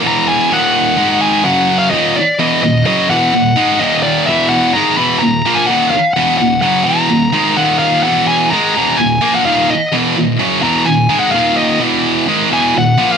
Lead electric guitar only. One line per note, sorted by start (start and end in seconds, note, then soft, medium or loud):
0.07 0.28 A#5 loud
0.28 0.52 G#5 loud
0.53 1.42 F#5 medium
1.21 1.45 G#5 medium
1.44 1.78 F#5 medium
1.79 1.90 F5 medium
1.90 2.15 D#5 medium
2.16 2.38 D5 medium
2.40 2.62 D#5 medium
2.63 2.85 D#5 medium
2.86 3.10 D#5 loud
3.10 3.83 F#5 loud
3.79 4.02 D#5 medium
4.03 4.28 D5 medium
4.26 4.49 E5 loud
4.49 4.75 F#5 medium
4.73 4.97 A#5 loud
4.97 5.18 B5 loud
5.19 5.57 A#5 loud
5.55 5.66 G#5 loud
5.66 5.90 F#5 loud
5.91 6.13 F5 loud
6.13 6.36 F#5 loud
6.38 6.60 F#5 medium
6.62 6.87 F#5 loud
6.84 7.58 A#5 loud
7.57 7.78 F#5 loud
7.79 8.02 F5 loud
8.03 8.27 F#5 medium
8.28 8.52 G#5 medium
8.50 8.73 A#5 loud
8.75 8.97 A#5 medium
8.97 9.34 G#5 medium
9.35 9.45 F#5 medium
9.46 9.68 F5 medium
9.70 9.92 D#5 medium
10.63 10.85 A#5 medium
10.85 11.19 G#5 loud
11.20 11.31 F#5 medium
11.31 11.57 F5 loud
11.56 11.79 D#5 medium
12.53 12.77 G#5 loud
12.78 13.12 F#5 loud
13.12 13.17 F5 medium